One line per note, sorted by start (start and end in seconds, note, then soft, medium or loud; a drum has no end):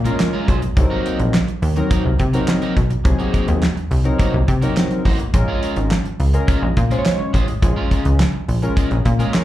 0.00 0.11 A#2 loud
0.04 0.46 G#3 loud
0.04 0.18 G#3 medium
0.04 0.46 C#4 medium
0.04 0.18 C#4 medium
0.04 0.18 F4 medium
0.04 0.46 F4 medium
0.04 0.18 A#4 medium
0.04 0.47 A#4 loud
0.04 closed hi-hat medium
0.19 muted clean electric guitar stroke soft
0.19 snare loud
0.19 clap medium
0.19 closed hi-hat medium
0.33 0.46 G#3 medium
0.33 0.47 C#4 medium
0.33 0.48 F4 medium
0.33 0.49 A#4 medium
0.48 0.68 B1 loud
0.48 0.62 G#3 medium
0.48 0.62 C#4 medium
0.48 0.61 F4 medium
0.48 0.62 C5 medium
0.48 kick medium
0.48 closed hi-hat medium
0.62 muted clean electric guitar stroke soft
0.62 closed hi-hat medium
0.76 0.87 C2 medium
0.76 1.34 F#3 medium
0.76 1.34 C4 medium
0.76 1.34 D#4 medium
0.76 0.84 A4 medium
0.76 muted clean electric guitar stroke soft
0.76 kick loud
0.76 closed hi-hat medium
0.84 1.38 A#4 medium
0.90 1.03 A#3 medium
0.90 1.04 D#4 medium
0.90 1.04 F#4 medium
0.90 1.05 A#4 medium
1.05 1.19 A#3 medium
1.05 1.19 D#4 medium
1.05 1.19 F#4 medium
1.05 1.18 A#4 medium
1.05 closed hi-hat medium
1.19 1.39 A#1 medium
1.19 muted clean electric guitar stroke soft
1.19 closed hi-hat medium
1.34 muted clean electric guitar stroke soft
1.34 snare loud
1.34 clap medium
1.34 closed hi-hat medium
1.48 muted clean electric guitar stroke soft
1.48 closed hi-hat soft
1.62 1.82 D#2 loud
1.62 open hi-hat medium
1.76 2.09 F#3 loud
1.76 2.09 C4 medium
1.76 2.10 D#4 medium
1.76 2.10 A#4 loud
1.76 muted clean electric guitar stroke soft
1.76 closed hi-hat medium
1.90 2.09 A#3 medium
1.90 2.04 D#4 medium
1.90 2.04 F#4 medium
1.90 2.03 A#4 medium
1.90 kick loud
1.90 closed hi-hat medium
2.05 2.15 C2 medium
2.05 muted clean electric guitar stroke medium
2.19 2.40 C3 medium
2.19 muted clean electric guitar stroke soft
2.19 kick medium
2.19 closed hi-hat medium
2.33 2.75 F#3 medium
2.33 2.46 A#3 soft
2.33 2.75 C4 medium
2.33 2.75 D#4 medium
2.33 2.47 D#4 medium
2.33 2.47 F#4 medium
2.33 2.47 A#4 medium
2.33 2.75 A#4 loud
2.33 closed hi-hat medium
2.47 muted clean electric guitar stroke soft
2.47 snare loud
2.47 clap loud
2.47 closed hi-hat loud
2.62 2.75 A#3 medium
2.62 2.75 D#4 medium
2.62 2.75 F#4 medium
2.62 2.76 A#4 medium
2.62 closed hi-hat soft
2.76 2.97 B1 medium
2.76 muted clean electric guitar stroke soft
2.76 kick medium
2.76 closed hi-hat medium
2.90 muted clean electric guitar stroke soft
2.90 closed hi-hat medium
3.04 3.15 C2 loud
3.04 3.62 F#3 medium
3.04 3.62 C4 medium
3.04 3.62 D#4 medium
3.04 3.63 G#4 loud
3.04 muted clean electric guitar stroke soft
3.04 kick loud
3.04 closed hi-hat medium
3.19 3.32 A#3 medium
3.19 3.32 D#4 medium
3.19 3.33 F#4 medium
3.19 3.33 A#4 medium
3.19 closed hi-hat soft
3.33 3.48 A#3 medium
3.33 3.47 D#4 medium
3.33 3.47 F#4 medium
3.33 3.46 A#4 medium
3.33 kick medium
3.33 closed hi-hat medium
3.48 3.68 D#2 loud
3.48 muted clean electric guitar stroke soft
3.48 closed hi-hat medium
3.62 muted clean electric guitar stroke soft
3.62 snare loud
3.62 clap medium
3.62 closed hi-hat medium
3.76 muted clean electric guitar stroke medium
3.76 closed hi-hat soft
3.91 4.11 C2 medium
3.91 open hi-hat medium
4.04 4.38 F#3 loud
4.04 4.38 C4 medium
4.04 4.38 D#4 medium
4.04 4.38 A#4 loud
4.04 muted clean electric guitar stroke soft
4.04 closed hi-hat medium
4.19 4.38 A#3 medium
4.19 4.33 D#4 medium
4.19 4.33 F#4 medium
4.19 4.32 A#4 loud
4.19 kick loud
4.19 closed hi-hat medium
4.33 4.44 C2 loud
4.33 muted clean electric guitar stroke medium
4.48 4.68 C3 loud
4.48 muted clean electric guitar stroke soft
4.48 kick medium
4.48 closed hi-hat medium
4.62 5.03 F#3 medium
4.62 4.75 A#3 medium
4.62 5.03 C4 medium
4.62 4.76 D#4 medium
4.62 5.03 D#4 medium
4.62 4.76 F#4 medium
4.62 4.76 A#4 medium
4.62 5.03 A#4 loud
4.62 closed hi-hat medium
4.76 snare loud
4.76 clap medium
4.76 closed hi-hat medium
4.91 muted clean electric guitar stroke medium
4.91 closed hi-hat soft
5.05 5.25 A1 medium
5.05 5.24 A#3 medium
5.05 5.19 D#4 loud
5.05 5.19 F#4 medium
5.05 5.19 C5 medium
5.05 kick medium
5.05 open hi-hat medium
5.20 muted clean electric guitar stroke medium
5.20 closed hi-hat medium
5.34 5.44 A#1 loud
5.34 5.91 G#3 loud
5.34 5.91 C#4 medium
5.34 5.91 F4 medium
5.34 5.91 A#4 loud
5.34 muted clean electric guitar stroke soft
5.34 kick loud
5.34 closed hi-hat loud
5.48 5.61 G#3 medium
5.48 5.62 C#4 medium
5.48 5.62 F4 medium
5.48 5.62 A#4 medium
5.62 5.77 G#3 medium
5.62 5.76 C#4 medium
5.62 5.76 F4 medium
5.62 5.75 A#4 medium
5.62 closed hi-hat medium
5.76 5.96 G#1 medium
5.76 muted clean electric guitar stroke soft
5.76 closed hi-hat medium
5.91 muted clean electric guitar stroke soft
5.91 snare loud
5.91 clap medium
5.91 closed hi-hat medium
6.05 muted clean electric guitar stroke soft
6.05 closed hi-hat soft
6.20 6.39 C#2 medium
6.20 open hi-hat medium
6.33 6.66 G#3 loud
6.33 6.66 C#4 medium
6.33 6.67 F4 medium
6.33 6.67 A#4 loud
6.33 muted clean electric guitar stroke soft
6.33 closed hi-hat medium
6.47 6.66 G#3 medium
6.47 6.62 C#4 loud
6.47 6.62 F4 loud
6.47 6.61 A#4 medium
6.47 kick loud
6.47 closed hi-hat medium
6.62 6.72 A#1 medium
6.62 muted clean electric guitar stroke medium
6.77 6.97 A#2 loud
6.77 muted clean electric guitar stroke soft
6.77 kick medium
6.77 closed hi-hat medium
6.91 7.32 G#3 medium
6.91 7.06 G#3 soft
6.91 7.32 C#4 medium
6.91 7.06 C#4 medium
6.91 7.06 F4 medium
6.91 7.32 F4 medium
6.91 7.05 A#4 medium
6.91 6.98 C5 medium
6.91 closed hi-hat medium
6.98 7.35 C#5 loud
7.05 snare loud
7.05 clap medium
7.05 closed hi-hat medium
7.19 muted clean electric guitar stroke medium
7.33 7.54 A1 medium
7.33 7.52 G#3 medium
7.33 7.47 C#4 medium
7.33 7.47 F4 loud
7.33 7.47 C5 loud
7.33 kick medium
7.33 closed hi-hat medium
7.48 muted clean electric guitar stroke soft
7.48 closed hi-hat medium
7.62 7.72 A#1 loud
7.62 8.19 G#3 loud
7.62 8.19 C#4 medium
7.62 8.20 F4 medium
7.62 8.20 G#4 loud
7.62 muted clean electric guitar stroke soft
7.62 kick loud
7.62 closed hi-hat loud
7.76 7.89 G#3 medium
7.76 7.90 C#4 medium
7.76 7.91 F4 medium
7.76 7.91 A#4 medium
7.91 8.05 G#3 medium
7.91 8.05 C#4 medium
7.91 8.04 F4 medium
7.91 8.04 A#4 medium
7.91 kick medium
7.91 closed hi-hat medium
8.05 8.25 C#2 medium
8.05 muted clean electric guitar stroke medium
8.05 closed hi-hat medium
8.20 muted clean electric guitar stroke soft
8.20 snare loud
8.20 clap medium
8.20 closed hi-hat medium
8.34 muted clean electric guitar stroke soft
8.48 8.68 A#1 medium
8.48 open hi-hat medium
8.62 8.95 G#3 medium
8.62 8.95 C#4 medium
8.62 8.95 F4 medium
8.62 8.95 A#4 loud
8.62 muted clean electric guitar stroke soft
8.62 closed hi-hat medium
8.76 8.95 G#3 medium
8.76 8.90 C#4 medium
8.76 8.90 F4 medium
8.76 8.89 A#4 medium
8.76 kick loud
8.76 closed hi-hat medium
8.90 9.01 A#1 medium
8.90 muted clean electric guitar stroke soft
8.90 closed hi-hat soft
9.05 9.25 A#2 loud
9.05 muted clean electric guitar stroke soft
9.05 kick medium
9.05 closed hi-hat medium
9.19 9.44 G#3 loud
9.19 9.32 G#3 medium
9.19 9.44 C#4 medium
9.19 9.33 C#4 medium
9.19 9.44 F4 medium
9.19 9.33 F4 medium
9.19 9.33 A#4 medium
9.19 9.44 A#4 loud
9.19 closed hi-hat medium
9.34 muted clean electric guitar stroke soft
9.34 snare loud
9.34 clap loud
9.34 closed hi-hat loud